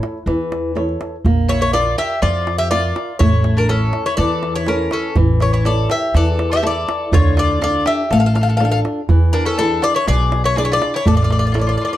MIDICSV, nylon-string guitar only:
0, 0, Header, 1, 2, 480
1, 0, Start_track
1, 0, Tempo, 490998
1, 1215, Time_signature, 4, 2, 24, 8
1, 11703, End_track
2, 0, Start_track
2, 0, Title_t, "Nylon-string guitar"
2, 0, Program_c, 0, 24
2, 0, Note_on_c, 0, 64, 46
2, 0, Note_on_c, 0, 69, 40
2, 0, Note_on_c, 0, 73, 51
2, 160, Note_off_c, 0, 64, 0
2, 161, Note_off_c, 0, 69, 0
2, 164, Note_off_c, 0, 73, 0
2, 262, Note_on_c, 0, 52, 70
2, 724, Note_off_c, 0, 52, 0
2, 734, Note_on_c, 0, 64, 45
2, 738, Note_on_c, 0, 69, 46
2, 742, Note_on_c, 0, 73, 57
2, 1119, Note_off_c, 0, 64, 0
2, 1120, Note_off_c, 0, 69, 0
2, 1123, Note_off_c, 0, 73, 0
2, 1227, Note_on_c, 0, 58, 64
2, 1686, Note_off_c, 0, 58, 0
2, 1695, Note_on_c, 0, 65, 50
2, 1701, Note_on_c, 0, 70, 43
2, 1703, Note_on_c, 0, 74, 53
2, 2079, Note_off_c, 0, 65, 0
2, 2081, Note_off_c, 0, 70, 0
2, 2083, Note_off_c, 0, 74, 0
2, 2178, Note_on_c, 0, 53, 67
2, 2641, Note_off_c, 0, 53, 0
2, 2651, Note_on_c, 0, 65, 51
2, 2655, Note_on_c, 0, 70, 41
2, 2659, Note_on_c, 0, 74, 52
2, 3035, Note_off_c, 0, 65, 0
2, 3038, Note_off_c, 0, 70, 0
2, 3040, Note_off_c, 0, 74, 0
2, 3138, Note_on_c, 0, 57, 69
2, 3600, Note_off_c, 0, 57, 0
2, 3604, Note_on_c, 0, 64, 46
2, 3609, Note_on_c, 0, 69, 40
2, 3611, Note_on_c, 0, 73, 51
2, 3991, Note_off_c, 0, 64, 0
2, 3992, Note_off_c, 0, 69, 0
2, 3995, Note_off_c, 0, 73, 0
2, 4091, Note_on_c, 0, 52, 66
2, 4556, Note_off_c, 0, 52, 0
2, 4565, Note_on_c, 0, 64, 45
2, 4570, Note_on_c, 0, 69, 43
2, 4574, Note_on_c, 0, 73, 55
2, 4951, Note_off_c, 0, 64, 0
2, 4954, Note_off_c, 0, 69, 0
2, 4956, Note_off_c, 0, 73, 0
2, 5046, Note_on_c, 0, 52, 68
2, 5513, Note_off_c, 0, 52, 0
2, 5528, Note_on_c, 0, 64, 46
2, 5535, Note_on_c, 0, 69, 41
2, 5536, Note_on_c, 0, 73, 49
2, 5913, Note_off_c, 0, 64, 0
2, 5915, Note_off_c, 0, 69, 0
2, 5917, Note_off_c, 0, 73, 0
2, 6012, Note_on_c, 0, 52, 68
2, 6477, Note_off_c, 0, 52, 0
2, 6480, Note_on_c, 0, 64, 51
2, 6485, Note_on_c, 0, 69, 45
2, 6490, Note_on_c, 0, 76, 51
2, 6868, Note_off_c, 0, 64, 0
2, 6871, Note_off_c, 0, 69, 0
2, 6873, Note_off_c, 0, 76, 0
2, 6965, Note_on_c, 0, 50, 68
2, 7433, Note_off_c, 0, 50, 0
2, 7447, Note_on_c, 0, 62, 49
2, 7452, Note_on_c, 0, 65, 43
2, 7455, Note_on_c, 0, 69, 51
2, 7832, Note_off_c, 0, 62, 0
2, 7836, Note_off_c, 0, 65, 0
2, 7836, Note_off_c, 0, 69, 0
2, 7925, Note_on_c, 0, 57, 71
2, 8393, Note_off_c, 0, 57, 0
2, 8406, Note_on_c, 0, 62, 48
2, 8411, Note_on_c, 0, 65, 48
2, 8415, Note_on_c, 0, 69, 57
2, 8792, Note_off_c, 0, 62, 0
2, 8795, Note_off_c, 0, 65, 0
2, 8798, Note_off_c, 0, 69, 0
2, 8892, Note_on_c, 0, 52, 66
2, 9357, Note_off_c, 0, 52, 0
2, 9363, Note_on_c, 0, 62, 47
2, 9372, Note_on_c, 0, 64, 45
2, 9372, Note_on_c, 0, 68, 51
2, 9752, Note_off_c, 0, 62, 0
2, 9754, Note_off_c, 0, 64, 0
2, 9756, Note_off_c, 0, 68, 0
2, 9850, Note_on_c, 0, 47, 67
2, 10317, Note_off_c, 0, 47, 0
2, 10322, Note_on_c, 0, 62, 51
2, 10331, Note_on_c, 0, 64, 45
2, 10331, Note_on_c, 0, 68, 57
2, 10711, Note_off_c, 0, 62, 0
2, 10715, Note_off_c, 0, 64, 0
2, 10717, Note_off_c, 0, 68, 0
2, 10805, Note_on_c, 0, 57, 63
2, 11275, Note_off_c, 0, 57, 0
2, 11286, Note_on_c, 0, 64, 48
2, 11289, Note_on_c, 0, 69, 42
2, 11299, Note_on_c, 0, 73, 48
2, 11674, Note_off_c, 0, 64, 0
2, 11675, Note_off_c, 0, 69, 0
2, 11681, Note_off_c, 0, 73, 0
2, 11703, End_track
0, 0, End_of_file